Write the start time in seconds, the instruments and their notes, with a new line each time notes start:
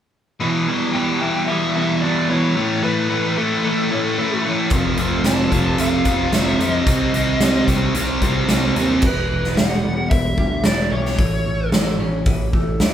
0.40 overdriven electric guitar E2 B2 E3, clean electric guitar E3
0.67 overdriven electric guitar E2 B2 E3, clean electric guitar G3
0.93 overdriven electric guitar E2 B2 E3, clean electric guitar G3, lead electric guitar G5
1.21 overdriven electric guitar E2 B2 E3, clean electric guitar E4
1.47 overdriven electric guitar E2 B2 E3, clean electric guitar G3, lead electric guitar E5
1.76 overdriven electric guitar E2 B2 E3, clean electric guitar B3
2.01 overdriven electric guitar E2 B2 E3, clean electric guitar E4, lead electric guitar D5
2.29 overdriven electric guitar E2 B2 E3, clean electric guitar B3, lead electric guitar C#5
2.56 overdriven electric guitar A2 E3 A3, clean electric guitar A2
2.83 overdriven electric guitar A2 E3 A3, clean electric guitar E3, lead electric guitar B4
3.09 overdriven electric guitar A2 E3 A3, clean electric guitar A3
3.37 overdriven electric guitar A2 E3 A3, clean electric guitar E4, lead electric guitar A4
3.64 overdriven electric guitar A2 E3 A3, clean electric guitar A3
3.91 overdriven electric guitar A2 E3 A3, clean electric guitar C#4
4.18 overdriven electric guitar A2 E3 A3, clean electric guitar E4
4.45 overdriven electric guitar A2 E3 A3, clean electric guitar C#4
4.70 picked electric bass F1, overdriven electric guitar F2 C3 F3, clean electric guitar F3, kick, closed hi-hat
4.97 picked electric bass F1, overdriven electric guitar F2 C3 F3, clean electric guitar A3, closed hi-hat
5.24 picked electric bass F1, overdriven electric guitar F2 C3 F3, clean electric guitar A3, lead electric guitar A5, snare, closed hi-hat
5.52 picked electric bass F1, overdriven electric guitar F2 C3 F3, clean electric guitar F4, kick, closed hi-hat
5.78 picked electric bass F1, overdriven electric guitar F2 C3 F3, clean electric guitar A3, lead electric guitar F5, closed hi-hat
6.05 picked electric bass F1, overdriven electric guitar F2 C3 F3, clean electric guitar C4, kick, closed hi-hat
6.33 picked electric bass F1, overdriven electric guitar F2 C3 F3, clean electric guitar F4, lead electric guitar E5, snare, closed hi-hat
6.59 picked electric bass F2, overdriven electric guitar F2 C3 F3, clean electric guitar C4, lead electric guitar D#5, closed hi-hat
6.86 picked electric bass C2, overdriven electric guitar C3 G3 C4, clean electric guitar C3, kick, closed hi-hat
7.13 picked electric bass C2, overdriven electric guitar C3 G3 C4, clean electric guitar D#3, closed hi-hat
7.40 picked electric bass C2, overdriven electric guitar C3 G3 C4, clean electric guitar G3, snare, closed hi-hat
7.68 picked electric bass C2, overdriven electric guitar C3 G3 C4, clean electric guitar G4, kick, closed hi-hat
7.95 picked electric bass C2, overdriven electric guitar C3 G3 C4, clean electric guitar G3, closed hi-hat
8.21 picked electric bass C2, overdriven electric guitar C3 G3 C4, clean electric guitar C4, kick, closed hi-hat
8.49 picked electric bass C2, overdriven electric guitar C3 G3 C4, clean electric guitar G4, snare, closed hi-hat
8.76 picked electric bass D#2, overdriven electric guitar C3 G3 C4, clean electric guitar C4, closed hi-hat
9.02 picked electric bass E1, clean electric guitar E3, kick, crash
9.06 lead electric guitar B4
9.32 picked electric bass E1
9.44 snare
9.56 picked electric bass E1, clean electric guitar G3, lead electric guitar F#5, snare, open hi-hat
9.84 picked electric bass E1, clean electric guitar B3
10.10 picked electric bass E1, clean electric guitar E3, lead electric guitar E5, kick, open hi-hat
10.38 picked electric bass D2, clean electric guitar G3, kick
10.64 picked electric bass E1, clean electric guitar E4, lead electric guitar D5, snare, open hi-hat
10.92 picked electric bass B1, clean electric guitar G3, lead electric guitar C#5
11.06 snare
11.18 picked electric bass A1, clean electric guitar A2, kick, open hi-hat
11.46 picked electric bass A1
11.72 picked electric bass A1, clean electric guitar A3, snare, open hi-hat
11.99 picked electric bass A1, clean electric guitar C#4
12.26 picked electric bass A1, clean electric guitar E3, kick, open hi-hat
12.53 picked electric bass A1, clean electric guitar A3, kick
12.80 picked electric bass D2, clean electric guitar E4, snare, open hi-hat